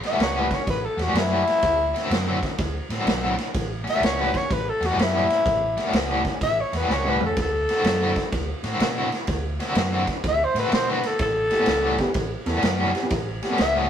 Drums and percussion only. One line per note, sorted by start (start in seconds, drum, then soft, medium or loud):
0.03 snare soft
0.03 ride medium
0.20 snare loud
0.20 ride medium
0.51 kick medium
0.51 snare soft
0.51 ride medium
0.67 kick loud
0.67 snare soft
0.67 ride medium
0.99 snare soft
0.99 ride medium
1.15 snare loud
1.15 ride medium
1.47 snare soft
1.47 ride medium
1.62 kick loud
1.62 snare soft
1.62 ride medium
1.96 snare soft
1.96 ride medium
2.11 snare loud
2.11 ride medium
2.43 kick medium
2.43 snare soft
2.43 ride medium
2.58 kick loud
2.58 snare soft
2.58 ride medium
2.90 snare soft
2.90 ride medium
3.07 snare loud
3.07 ride medium
3.38 snare soft
3.38 ride medium
3.54 kick loud
3.54 snare soft
3.54 ride medium
3.87 snare soft
3.87 ride medium
4.03 snare loud
4.03 ride medium
4.34 kick medium
4.34 snare soft
4.34 ride medium
4.51 kick loud
4.51 snare soft
4.51 ride medium
4.82 snare soft
4.82 ride medium
4.99 snare loud
4.99 ride medium
5.30 snare soft
5.30 ride medium
5.46 kick loud
5.46 snare soft
5.46 ride medium
5.77 snare soft
5.77 ride medium
5.93 snare loud
5.93 ride medium
6.25 kick medium
6.25 snare soft
6.25 ride medium
6.41 kick loud
6.41 snare soft
6.41 ride medium
6.73 snare soft
6.73 ride medium
6.90 snare medium
7.04 mid tom medium
7.20 floor tom medium
7.37 kick loud
7.37 snare soft
7.37 ride medium
7.69 snare soft
7.69 ride medium
7.84 snare loud
7.84 ride medium
8.16 kick medium
8.16 snare soft
8.16 ride medium
8.32 kick loud
8.32 snare soft
8.32 ride medium
8.64 snare soft
8.64 ride medium
8.80 snare loud
8.80 ride medium
9.12 snare soft
9.12 ride medium
9.27 kick loud
9.27 snare soft
9.27 ride medium
9.60 snare soft
9.60 ride medium
9.75 snare loud
9.75 ride medium
10.07 kick medium
10.07 snare soft
10.07 ride medium
10.24 kick loud
10.24 snare soft
10.24 ride medium
10.56 snare soft
10.56 ride medium
10.72 snare loud
10.72 ride medium
11.03 snare soft
11.03 ride medium
11.19 kick loud
11.19 snare soft
11.19 ride medium
11.50 snare soft
11.50 ride medium
11.66 snare loud
11.66 ride medium
11.98 kick medium
11.98 snare soft
11.98 ride medium
12.14 kick loud
12.14 snare soft
12.14 ride medium
12.46 snare soft
12.46 ride medium
12.62 snare loud
12.62 ride medium
12.95 snare soft
12.95 ride medium
13.10 kick loud
13.10 snare soft
13.10 ride medium
13.42 snare soft
13.42 ride medium
13.58 snare loud
13.58 ride medium